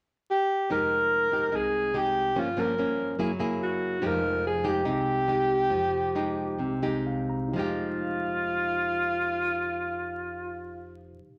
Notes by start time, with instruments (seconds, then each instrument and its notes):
0.31 alto saxophone G4
0.70 upright bass F1, nylon-string guitar F3 G#3 D#4 G4, alto saxophone A#4
1.32 nylon-string guitar G#3 D#4 G4
1.52 upright bass C2, nylon-string guitar C3 G#3 D#4, alto saxophone G#4
1.94 nylon-string guitar G#3 D#4 G4, alto saxophone G4
2.35 upright bass G1, nylon-string guitar G2 F3 A#3 C#4, alto saxophone F4
2.57 nylon-string guitar F3 A#3 C#4, alto saxophone A#4
2.78 nylon-string guitar F3 A#3 C#4
3.19 upright bass F#1, nylon-string guitar F#3 A#3 E4 G#4
3.39 nylon-string guitar A#3 E4 G#4
3.63 alto saxophone F#4
3.99 upright bass F1, nylon-string guitar F3 G#3 D#4 G4, tine electric piano D#4 G4
4.06 alto saxophone A#4, tine electric piano F5
4.47 alto saxophone G#4
4.64 nylon-string guitar G#3 D#4 G4
4.68 alto saxophone G4
4.85 upright bass C2, nylon-string guitar C3 G#3 D#4 G4
5.28 nylon-string guitar G#3 D#4 G4
5.70 upright bass F1, nylon-string guitar F3
6.15 nylon-string guitar G#3 D#4 G4
6.58 upright bass C2, nylon-string guitar C3
6.83 nylon-string guitar G#3 D#4 G4
7.07 tine electric piano F5
7.30 tine electric piano A#5
7.48 tine electric piano D#4 G4
7.54 upright bass F1, nylon-string guitar F3 G#3, alto saxophone F4
7.58 nylon-string guitar D#4 G4, tine electric piano F5